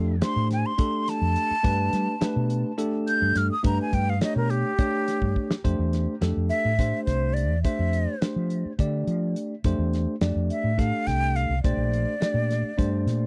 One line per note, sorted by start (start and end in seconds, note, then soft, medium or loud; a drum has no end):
0.00 0.20 F2 medium
0.00 0.14 A3 medium
0.00 0.14 D4 medium
0.00 0.14 G4 medium
0.00 0.15 A4 loud
0.21 0.71 A3 medium
0.21 0.72 D4 medium
0.21 0.71 G4 medium
0.21 0.72 C5 medium
0.21 0.51 C6 medium
0.21 snare loud
0.21 closed hi-hat medium
0.36 0.63 A2 medium
0.51 0.68 G#5 medium
0.51 snare soft
0.51 closed hi-hat medium
0.66 1.11 C6 medium
0.78 1.53 A3 medium
0.78 1.53 D4 medium
0.78 1.53 G4 medium
0.78 1.54 A4 medium
0.78 kick loud
0.78 closed hi-hat medium
1.08 2.76 A5 loud
1.08 snare soft
1.08 closed hi-hat medium
1.21 1.35 F2 medium
1.36 closed hi-hat medium
1.51 muted fretless electric bass stroke soft
1.63 1.91 G2 loud
1.63 2.14 A3 medium
1.63 2.14 D4 medium
1.63 2.14 G4 medium
1.63 2.14 B4 medium
1.63 kick loud
1.63 closed hi-hat medium
1.93 2.07 G3 medium
1.93 snare soft
1.93 closed hi-hat medium
2.21 2.71 A3 medium
2.21 2.71 D4 medium
2.21 2.71 G4 medium
2.21 2.71 B4 loud
2.21 muted fretless electric bass stroke soft
2.21 snare loud
2.21 closed hi-hat medium
2.36 2.63 B2 medium
2.50 closed hi-hat medium
2.78 3.53 A3 medium
2.78 3.53 D4 medium
2.78 3.53 G4 medium
2.78 3.53 A4 loud
2.78 closed hi-hat medium
3.07 3.39 G6 medium
3.07 closed hi-hat medium
3.22 3.35 G2 medium
3.35 3.49 G2 medium
3.35 3.50 F6 medium
3.35 snare soft
3.35 closed hi-hat medium
3.52 3.64 D#6 medium
3.63 3.78 G2 loud
3.63 4.14 A3 medium
3.63 4.14 D4 medium
3.63 4.14 G4 medium
3.63 4.14 B4 medium
3.63 3.78 A#5 medium
3.63 kick loud
3.63 closed hi-hat medium
3.82 3.96 G#5 medium
3.93 4.20 G2 loud
3.93 4.11 G5 loud
3.93 kick medium
3.93 closed hi-hat medium
4.10 4.22 F5 medium
4.21 4.71 A3 medium
4.21 4.71 D4 medium
4.21 4.71 G4 medium
4.21 4.71 C#5 medium
4.21 4.36 D#5 medium
4.21 snare loud
4.21 closed hi-hat medium
4.36 4.63 B2 medium
4.36 4.52 A#4 medium
4.50 5.61 G4 loud
4.50 closed hi-hat medium
4.78 5.53 A3 medium
4.78 5.53 D4 medium
4.78 5.53 G4 medium
4.78 5.53 C#5 medium
4.78 kick loud
4.78 closed hi-hat medium
5.08 snare soft
5.08 closed hi-hat medium
5.22 5.35 G2 medium
5.22 kick medium
5.36 kick medium
5.50 muted fretless electric bass stroke soft
5.50 snare loud
5.64 5.78 F2 medium
5.64 6.14 A3 medium
5.64 6.14 D4 medium
5.64 6.14 G4 medium
5.64 6.14 C5 loud
5.64 kick loud
5.64 closed hi-hat medium
5.79 6.06 E2 medium
5.93 snare soft
5.93 closed hi-hat medium
6.21 6.35 F2 medium
6.21 6.71 A3 medium
6.21 6.71 D4 medium
6.21 6.71 G4 medium
6.21 6.71 A4 medium
6.21 snare medium
6.21 closed hi-hat medium
6.37 6.50 F2 medium
6.49 7.03 E5 loud
6.49 closed hi-hat medium
6.65 6.91 A2 medium
6.79 7.53 A3 medium
6.79 7.54 D4 medium
6.79 7.54 G4 medium
6.79 7.54 C5 medium
6.79 kick loud
6.79 snare soft
6.79 closed hi-hat medium
7.05 7.50 C2 medium
7.05 7.35 C5 medium
7.05 kick medium
7.05 snare soft
7.05 closed hi-hat medium
7.34 7.62 D5 medium
7.34 closed hi-hat medium
7.50 7.63 E2 medium
7.63 8.14 A3 medium
7.63 8.14 D4 medium
7.63 8.14 G4 medium
7.63 8.14 C5 medium
7.63 8.24 E5 medium
7.63 kick loud
7.63 closed hi-hat medium
7.79 8.06 F2 medium
7.93 closed hi-hat medium
8.21 8.71 A3 medium
8.21 8.71 D4 medium
8.21 8.71 G4 medium
8.21 8.72 C5 medium
8.21 snare loud
8.21 closed hi-hat medium
8.36 8.63 F3 medium
8.50 closed hi-hat medium
8.65 muted fretless electric bass stroke soft
8.79 9.05 D3 medium
8.79 9.53 A3 medium
8.79 9.53 D4 medium
8.79 9.54 G4 medium
8.79 9.54 D5 medium
8.79 kick loud
8.79 closed hi-hat medium
9.07 9.34 F3 medium
9.07 closed hi-hat medium
9.36 closed hi-hat medium
9.64 9.78 F2 medium
9.64 10.14 A3 medium
9.64 10.14 D4 medium
9.64 10.15 G4 medium
9.64 10.15 C5 loud
9.64 kick loud
9.64 closed hi-hat medium
9.79 10.05 E2 medium
9.93 snare soft
9.93 closed hi-hat soft
10.21 10.35 F2 medium
10.21 10.71 A3 medium
10.21 10.71 D4 medium
10.21 10.71 G4 medium
10.21 10.71 D5 medium
10.21 snare loud
10.21 closed hi-hat medium
10.36 10.49 F2 medium
10.50 10.81 E5 medium
10.50 closed hi-hat medium
10.64 10.91 A2 medium
10.78 11.53 A3 medium
10.78 11.53 D4 medium
10.78 11.53 G4 medium
10.78 11.53 A4 medium
10.78 11.08 F5 medium
10.78 kick loud
10.78 snare soft
10.78 closed hi-hat medium
11.07 11.47 C2 medium
11.07 11.37 G5 loud
11.07 kick medium
11.07 snare soft
11.07 closed hi-hat medium
11.36 11.63 F5 medium
11.36 closed hi-hat medium
11.49 11.63 C2 medium
11.63 11.76 A#1 medium
11.63 12.14 A3 medium
11.63 12.14 D4 medium
11.63 12.14 G4 medium
11.63 12.14 C5 medium
11.63 13.27 D5 medium
11.63 kick loud
11.63 closed hi-hat medium
11.77 12.04 A#1 medium
11.94 closed hi-hat medium
12.20 12.70 A3 medium
12.20 12.71 D4 medium
12.20 12.71 G4 medium
12.20 12.71 D5 medium
12.20 snare loud
12.20 closed hi-hat medium
12.34 12.61 A#2 medium
12.51 snare soft
12.51 closed hi-hat medium
12.62 muted fretless electric bass stroke soft
12.77 13.05 G2 medium
12.77 13.27 A3 medium
12.77 13.27 D4 medium
12.77 13.27 G4 medium
12.77 13.27 C5 medium
12.77 kick loud
12.77 closed hi-hat medium
13.06 13.27 A#2 medium
13.06 snare soft
13.06 closed hi-hat medium